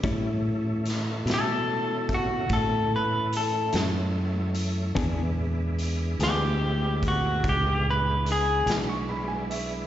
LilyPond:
<<
  \new Staff \with { instrumentName = "Upright piano" } { \time 12/8 \key e \mixolydian \tempo 4. = 49 r1. | r1 r8 gis''16 cis'''16 b''16 gis''16 e''8 | }
  \new Staff \with { instrumentName = "Clean electric guitar" } { \time 12/8 \key e \mixolydian r4. a'4 fis'8 a'8 b'8 a'8 r4. | r4. g'4 fis'8 g'8 b'8 gis'8 r4. | }
  \new Staff \with { instrumentName = "Clean electric guitar" } { \time 12/8 \key e \mixolydian <a, g cis' e'>8 r4 <a, g cis' e'>8 r2 r8 <a, g cis' e'>8 r4 | <e b d' gis'>8 r4 <e b d' gis'>8 r2 r8 <e b d' gis'>8 r4 | }
  \new Staff \with { instrumentName = "Tonewheel organ" } { \time 12/8 \key e \mixolydian <e a cis' e'>1. | <gis b d' e'>1. | }
  \new Staff \with { instrumentName = "Fingered electric bass" } { \clef bass \time 12/8 \key e \mixolydian a,4. b,4. a,4. fis,4. | e,4. d,4. cis,4. b,,4. | }
  \new DrumStaff \with { instrumentName = "Drums" } \drummode { \time 12/8 <hh bd>4 <hh sn>8 <hh sn>4 <hh bd>8 <hh bd>4 hh8 <hh sn>4 hh8 | <hh bd>4 hh8 <hh sn>4 <hh bd>8 <hh bd>4 hh8 <hh sn>4 hh8 | }
>>